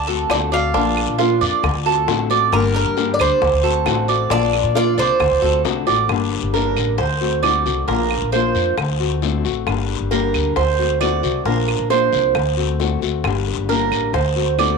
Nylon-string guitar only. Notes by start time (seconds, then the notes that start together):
0.08 A3 C4 F#4
0.30 D3 A3 C4 F#4
0.53 A3 C4 F#4
0.75 F3 A#3 D4 F4
1.19 F3 A#3 D4 F4
1.64 muted nylon-string guitar stroke
1.86 A3 C4 F#4
2.08 D3 A3 C4 F#4
2.30 A3 C4 F#4
2.52 D3 G3 A#3 D4 G4
2.97 D3 G3 A#3 D4 G4
3.42 muted nylon-string guitar stroke
3.63 A3 C4 F#4
3.86 D3 A3 C4 F#4
4.09 A3 C4 F#4
4.31 F3 A#3 D4 F4
4.75 F3 A#3 D4 F4
5.20 muted nylon-string guitar stroke
5.42 A3 C4 F#4
5.64 D3 A3 C4 F#4
5.87 A3 C4 F#4
6.10 D3 G3 A#3 D4 G4
6.54 D3 G3 A#3 D4 G4
6.99 muted nylon-string guitar stroke
7.21 A3 C4 F#4
7.43 D3 A3 C4 F#4
7.66 A3 C4 F#4
7.89 F3 A#3 D4 F4
8.34 F3 A#3 D4 F4
8.78 muted nylon-string guitar stroke
9.00 A3 C4 F#4
9.22 D3 A3 C4 F#4
9.45 A3 C4 F#4
9.67 D3 G3 A#3 D4 G4
10.11 D3 G3 A#3 D4 G4
10.57 muted nylon-string guitar stroke
10.79 A3 C4 F#4
11.01 D3 A3 C4 F#4
11.23 A3 C4 F#4
11.46 F3 A#3 D4 F4
11.90 F3 A#3 D4 F4
12.35 muted nylon-string guitar stroke
12.57 A3 C4 F#4
12.79 D3 A3 C4 F#4
13.02 A3 C4 F#4
13.25 D3 G3 A#3 D4 G4
13.69 D3 G3 A#3 D4 G4
14.14 muted nylon-string guitar stroke
14.36 A3 C4 F#4
14.58 D3 A3 C4 F#4